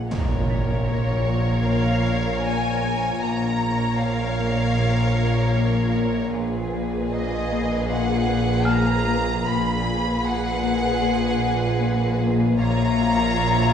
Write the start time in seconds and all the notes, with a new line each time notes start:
0.10 A#1 A#2 A#4 C#5, impact
0.50 A#2 B6
0.88 A#2 C#5
1.28 A#3
1.67 A#2 F5
2.06 A#2
2.44 A#3 G#5
2.83 A#3
3.22 A#1 A#2 A#4 C#5 A#5
3.99 A#2 F5
4.39 A#3
4.78 A#2
5.18 A#2
5.57 A#3
5.95 A#3
6.33 A#1 A#2 G#4 B4
6.74 A#2
7.11 A#2 D#5
7.52 A#3
7.89 A#2 F#5
8.29 A#2
8.65 A#3 A#5 F6
9.07 A#3
9.45 A#1 A#2 G#4 B4 B5
9.84 A#2
10.23 A#2 F#5
10.63 A#3
11.02 A#2
11.80 A#3
12.20 A#3
12.58 A#1 A#2 F4 C#5 E5 A#5
12.98 A#2
13.37 A#2